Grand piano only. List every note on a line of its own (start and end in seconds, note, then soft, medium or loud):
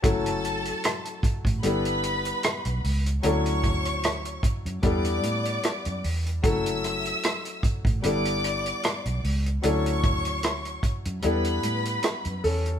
0.02 1.60 F#3 medium
0.02 1.60 A3 medium
0.02 1.61 C#4 medium
0.02 1.61 E4 medium
0.02 1.61 A4 medium
1.63 3.20 G3 medium
1.63 3.20 B3 medium
1.63 3.21 D4 medium
1.63 3.21 E4 medium
1.63 3.21 A4 medium
3.23 4.80 F#3 medium
3.23 4.80 C#4 medium
3.23 4.81 D4 medium
3.23 4.81 E4 medium
3.23 4.81 A4 medium
4.83 6.40 G3 medium
4.83 6.40 B3 medium
4.83 6.41 D4 medium
4.83 6.41 E4 medium
4.83 6.41 A4 medium
6.43 8.00 F#3 medium
6.43 8.00 A3 medium
6.43 8.01 C#4 medium
6.43 8.01 E4 medium
6.43 8.01 A4 medium
8.02 9.60 G3 medium
8.02 9.60 B3 medium
8.02 9.61 D4 medium
8.02 9.61 E4 medium
8.02 9.61 A4 medium
9.62 11.20 F#3 medium
9.62 11.20 C#4 medium
9.62 11.20 D4 medium
9.62 11.21 E4 medium
9.62 11.21 A4 medium
11.22 12.79 G3 medium
11.22 12.79 B3 medium
11.22 12.79 D4 medium
11.22 12.79 E4 medium
11.22 12.42 A4 medium
12.44 12.79 C#4 medium
12.44 12.79 A4 medium